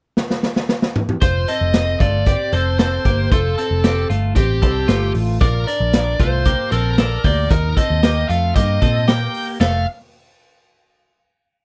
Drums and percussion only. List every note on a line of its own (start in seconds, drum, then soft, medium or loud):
0.17 snare medium
0.30 snare medium
0.43 snare medium
0.56 snare medium
0.69 snare medium
0.82 snare medium
0.96 mid tom medium
1.09 mid tom medium
1.22 kick loud
1.22 closed hi-hat medium
1.48 closed hi-hat medium
1.74 snare medium
1.74 closed hi-hat medium
2.00 kick medium
2.00 closed hi-hat medium
2.26 kick medium
2.26 closed hi-hat medium
2.52 closed hi-hat medium
2.79 snare medium
2.79 closed hi-hat medium
3.05 kick medium
3.05 closed hi-hat medium
3.32 kick loud
3.32 closed hi-hat medium
3.58 closed hi-hat medium
3.84 snare loud
3.84 closed hi-hat medium
4.10 closed hi-hat medium
4.36 kick medium
4.36 closed hi-hat medium
4.62 kick medium
4.62 closed hi-hat medium
4.88 snare medium
4.88 closed hi-hat medium
5.15 open hi-hat medium
5.41 kick loud
5.41 closed hi-hat medium
5.68 closed hi-hat medium
5.93 snare loud
5.93 closed hi-hat medium
6.20 kick medium
6.20 closed hi-hat medium
6.45 kick medium
6.45 closed hi-hat medium
6.71 closed hi-hat medium
6.98 snare loud
6.98 closed hi-hat medium
7.24 kick medium
7.24 open hi-hat medium
7.50 kick loud
7.50 closed hi-hat medium
7.77 kick medium
7.77 closed hi-hat medium
8.03 snare loud
8.03 closed hi-hat medium
8.30 closed hi-hat medium
8.56 kick medium
8.56 closed hi-hat medium
8.82 kick medium
8.82 closed hi-hat medium
9.08 snare medium
9.08 closed hi-hat medium
9.34 open hi-hat medium
9.61 snare medium
9.61 crash medium